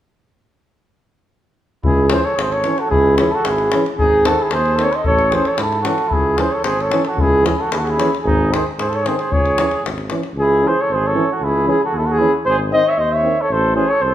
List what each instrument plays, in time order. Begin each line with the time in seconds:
1.84 tuba C#2, flugelhorn E4 G#4, davul low
2.09 euphonium E3, french horn C#4, flugelhorn G#4, davul high
2.14 flugelhorn C5
2.24 flugelhorn A4 C#5
2.36 tuba G#1, flugelhorn G#4, davul high
2.42 flugelhorn C5
2.51 flugelhorn A4 C#5, davul high
2.64 euphonium E3, french horn C#4, davul high
2.78 flugelhorn F#4 A4, davul high
2.90 tuba C#2, flugelhorn E4 G#4, davul low
3.17 euphonium E3, french horn C#4, flugelhorn E4 G#4, davul high
3.31 flugelhorn F#4 A4
3.45 tuba G#1, flugelhorn G#4, davul high
3.50 flugelhorn E4
3.58 davul high
3.72 euphonium E3, french horn C#4, davul high
3.86 davul high
3.98 tuba G#1, flugelhorn D#4 G#4, davul low
4.24 euphonium D#3, french horn C4, flugelhorn F#4 A4, davul high
4.39 flugelhorn E4 G#4
4.51 tuba D#2, flugelhorn G#4 C5, davul high
4.66 davul high
4.75 euphonium D#3, flugelhorn A4, davul high
4.80 french horn C4, flugelhorn C#5
4.92 flugelhorn C5 D#5, davul high
5.03 tuba A1, flugelhorn A4 C#5, davul low
5.19 davul high
5.31 euphonium E3, french horn C#4, flugelhorn G#4 C5, davul high
5.44 flugelhorn A4, davul high
5.48 flugelhorn C#5
5.57 tuba G#2, flugelhorn E4, davul high
5.61 flugelhorn A4
5.72 davul high
5.82 french horn C#4, flugelhorn F#4, davul high
5.86 euphonium E3, flugelhorn A4
5.98 davul high
6.08 tuba C#2, flugelhorn E4, davul low
6.13 flugelhorn G#4
6.37 euphonium E3, french horn C#4, flugelhorn G#4 C5, davul high
6.52 flugelhorn A4 C#5
6.64 tuba G#1, flugelhorn G#4 C5, davul high
6.80 flugelhorn A4 C#5, davul high
6.90 euphonium E3, french horn C#4, davul high
7.05 flugelhorn F#4 A4, davul high
7.16 tuba C#2, flugelhorn E4, davul low
7.21 flugelhorn G#4
7.43 euphonium E3, french horn C#4, flugelhorn G#4, davul high
7.47 flugelhorn E4
7.60 flugelhorn F#4 A4
7.71 tuba D#2, flugelhorn E4 G#4, davul high
7.78 flugelhorn F#4 A4
7.85 flugelhorn G#4, davul high
7.90 flugelhorn E4
7.97 euphonium E3, french horn C#4, davul high
8.15 davul high
8.23 tuba G#1, flugelhorn D#4 G#4
8.27 davul low
8.50 euphonium D#3, french horn C4, flugelhorn G#4 C5, davul high
8.79 tuba G#2, flugelhorn G#4 C5, davul high
8.88 flugelhorn A4
8.93 flugelhorn C#5, davul high
9.03 euphonium D#3, french horn C4, flugelhorn G#4, davul high
9.08 flugelhorn C5
9.17 flugelhorn G#4 C5, davul high
9.31 tuba C#2, flugelhorn G#4 C#5, davul low
9.46 davul high
9.56 euphonium E3, french horn C#4, davul high
9.71 davul high
9.83 tuba G#1, davul high
9.98 davul high
10.10 euphonium E3, french horn C#4, davul high
10.23 davul high
10.34 tuba C#2
10.39 flugelhorn E4 G#4
10.62 euphonium E3, french horn C#4
10.68 flugelhorn G#4 C5
10.81 flugelhorn A4 C#5
10.89 tuba G#1, flugelhorn C5
10.95 flugelhorn G#4
11.07 flugelhorn A4 C#5
11.14 euphonium E3, french horn C#4
11.32 flugelhorn F#4 A4
11.41 tuba C#2, flugelhorn E4 G#4
11.66 euphonium E3, french horn C#4, flugelhorn G#4
11.71 flugelhorn E4
11.84 flugelhorn F#4 A4
11.93 tuba D#2, flugelhorn G#4
11.98 flugelhorn E4 A4
12.06 flugelhorn F#4
12.11 flugelhorn G#4
12.19 euphonium E3, french horn C#4, flugelhorn E4
12.45 tuba G#1, flugelhorn C5
12.49 flugelhorn G#4
12.71 euphonium D#3, french horn C4, flugelhorn D#5
12.75 flugelhorn C5
12.86 flugelhorn C#5 E5
12.97 tuba D#2, flugelhorn C5 D#5
13.12 flugelhorn C#5 E5
13.22 euphonium D#3, french horn C4
13.41 flugelhorn A4 C#5
13.50 tuba A1, flugelhorn A4 C5
13.75 euphonium E3, french horn C#4, flugelhorn G#4 C5
13.88 flugelhorn A4 C#5
14.01 tuba C2, flugelhorn A4 C5